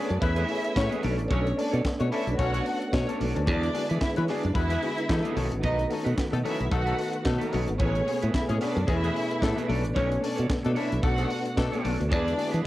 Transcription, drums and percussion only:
0.10 closed hi-hat soft
0.22 kick loud
0.22 closed hi-hat medium
0.36 closed hi-hat medium
0.49 open hi-hat medium
0.49 muted conga soft
0.65 closed hi-hat medium
0.76 kick loud
0.76 snare loud
0.76 clap loud
0.91 closed hi-hat soft
0.91 high conga loud
1.03 open hi-hat medium
1.03 high conga medium
1.03 low conga medium
1.19 closed hi-hat soft
1.31 kick loud
1.31 closed hi-hat medium
1.31 muted conga soft
1.31 low conga medium
1.47 closed hi-hat soft
1.58 open hi-hat medium
1.58 high conga medium
1.74 closed hi-hat medium
1.85 kick loud
1.85 snare loud
1.85 clap loud
2.00 closed hi-hat soft
2.00 high conga medium
2.12 open hi-hat medium
2.12 muted conga soft
2.28 closed hi-hat soft
2.39 kick loud
2.39 closed hi-hat medium
2.54 closed hi-hat medium
2.66 open hi-hat medium
2.82 closed hi-hat soft
2.93 kick loud
2.93 snare loud
2.93 clap medium
3.08 closed hi-hat medium
3.08 high conga loud
3.20 open hi-hat medium
3.20 muted conga soft
3.20 high conga medium
3.20 low conga medium
3.36 closed hi-hat soft
3.47 kick loud
3.47 closed hi-hat medium
3.47 muted conga soft
3.47 low conga medium
3.63 closed hi-hat medium
3.75 open hi-hat medium
3.75 high conga medium
3.90 closed hi-hat medium
4.01 kick loud
4.01 snare loud
4.01 clap medium
4.16 closed hi-hat medium
4.16 high conga medium
4.28 snare soft
4.28 open hi-hat medium
4.43 closed hi-hat soft
4.55 kick loud
4.55 closed hi-hat medium
4.70 closed hi-hat medium
4.82 open hi-hat medium
4.82 muted conga soft
4.98 closed hi-hat medium
5.09 kick loud
5.09 snare loud
5.09 clap loud
5.09 muted conga soft
5.25 closed hi-hat soft
5.25 high conga loud
5.37 open hi-hat medium
5.37 high conga medium
5.37 low conga medium
5.52 closed hi-hat medium
5.63 kick loud
5.63 closed hi-hat medium
5.63 muted conga soft
5.63 low conga medium
5.79 closed hi-hat soft
5.91 open hi-hat medium
5.91 muted conga soft
5.91 high conga medium
6.07 closed hi-hat medium
6.18 kick medium
6.18 snare loud
6.18 clap medium
6.18 muted conga soft
6.32 closed hi-hat soft
6.32 high conga medium
6.45 open hi-hat medium
6.45 muted conga soft
6.45 low conga medium
6.60 closed hi-hat soft
6.72 kick loud
6.72 closed hi-hat medium
6.87 closed hi-hat medium
6.98 open hi-hat medium
6.98 muted conga soft
7.13 closed hi-hat medium
7.25 kick loud
7.25 snare loud
7.25 clap medium
7.25 muted conga soft
7.41 closed hi-hat medium
7.41 high conga loud
7.53 open hi-hat medium
7.53 high conga medium
7.53 low conga medium
7.68 closed hi-hat soft
7.80 kick loud
7.80 closed hi-hat medium
7.80 low conga medium
7.95 closed hi-hat soft
8.07 open hi-hat medium
8.07 high conga medium
8.22 closed hi-hat medium
8.34 kick loud
8.34 snare loud
8.34 clap medium
8.34 muted conga soft
8.49 closed hi-hat medium
8.49 high conga medium
8.61 snare soft
8.61 open hi-hat medium
8.61 muted conga soft
8.77 closed hi-hat soft
8.88 kick loud
8.88 closed hi-hat medium
9.04 closed hi-hat medium
9.16 open hi-hat medium
9.31 closed hi-hat soft
9.42 kick loud
9.42 snare loud
9.42 clap loud
9.57 closed hi-hat medium
9.57 high conga loud
9.69 open hi-hat medium
9.69 muted conga soft
9.69 high conga medium
9.69 low conga medium
9.85 closed hi-hat soft
9.96 kick loud
9.96 closed hi-hat medium
9.96 muted conga soft
9.96 low conga medium
10.12 closed hi-hat soft
10.22 open hi-hat loud
10.22 muted conga soft
10.22 high conga medium
10.38 closed hi-hat medium
10.50 kick loud
10.50 snare loud
10.50 clap medium
10.50 muted conga soft
10.63 closed hi-hat medium
10.63 high conga medium
10.76 open hi-hat medium
10.92 closed hi-hat soft
11.03 kick loud
11.03 closed hi-hat medium
11.03 muted conga soft
11.18 closed hi-hat medium
11.30 open hi-hat medium
11.30 muted conga soft
11.46 closed hi-hat medium
11.57 kick loud
11.57 snare loud
11.57 clap loud
11.72 closed hi-hat soft
11.72 high conga medium
11.85 open hi-hat medium
11.85 muted conga soft
11.85 high conga medium
11.85 low conga medium
12.01 closed hi-hat soft
12.12 kick loud
12.12 closed hi-hat medium
12.12 low conga medium
12.28 closed hi-hat soft
12.38 open hi-hat medium
12.38 high conga medium
12.54 closed hi-hat medium

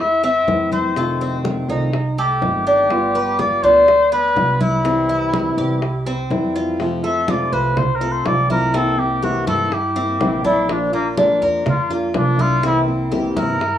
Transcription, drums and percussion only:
0.23 high bongo soft
0.23 high conga soft
0.48 high bongo soft
0.48 low bongo medium
0.48 high conga medium
0.72 high conga medium
0.96 high bongo medium
0.96 high conga soft
1.21 high bongo soft
1.21 high conga soft
1.45 high bongo medium
1.45 high conga medium
1.69 high conga soft
1.93 high bongo medium
1.93 high conga soft
2.18 high bongo soft
2.18 high conga soft
2.42 high bongo soft
2.42 low bongo medium
2.42 high conga medium
2.90 high bongo medium
2.90 high conga soft
3.15 high bongo soft
3.15 high conga soft
3.39 high bongo medium
3.39 high conga medium
3.64 high conga soft
3.88 high bongo medium
3.88 high conga soft
4.12 high bongo soft
4.12 high conga soft
4.36 high bongo soft
4.36 low bongo medium
4.36 high conga medium
4.61 high conga medium
4.85 high bongo medium
4.85 high conga soft
5.09 high bongo soft
5.09 high conga soft
5.33 high bongo medium
5.33 high conga loud
5.58 high conga soft
5.82 high bongo medium
5.82 high conga soft
6.06 high bongo soft
6.06 high conga soft
6.30 high bongo soft
6.30 low bongo medium
6.30 high conga medium
6.80 high bongo medium
6.80 high conga soft
7.04 high conga soft
7.28 high bongo medium
7.28 high conga medium
7.52 high bongo soft
7.52 high conga soft
7.77 high bongo medium
7.77 high conga soft
7.77 low conga medium
8.01 high bongo soft
8.01 high conga soft
8.26 high bongo medium
8.26 low bongo medium
8.26 high conga medium
8.50 high bongo soft
8.50 high conga medium
8.74 high bongo medium
8.74 high conga soft
8.99 high conga soft
9.23 high bongo medium
9.23 high conga medium
9.47 high bongo soft
9.47 high conga medium
9.72 high bongo medium
9.72 high conga soft
9.97 high conga soft
10.21 high bongo medium
10.21 low bongo medium
10.21 high conga medium
10.45 high bongo soft
10.45 high conga medium
10.69 high bongo medium
10.69 high conga soft
10.94 high conga soft
11.17 high bongo medium
11.17 high conga loud
11.42 high bongo soft
11.42 high conga soft
11.66 high bongo medium
11.66 high conga soft
11.66 low conga medium
11.91 high bongo soft
11.91 high conga soft
12.14 high bongo medium
12.14 low bongo medium
12.14 high conga medium
12.39 high bongo soft
12.39 high conga medium
12.63 high bongo medium
12.88 high conga soft
13.12 high bongo medium
13.12 high conga medium
13.37 high bongo soft
13.37 high conga loud
13.61 high bongo medium
13.61 high conga soft

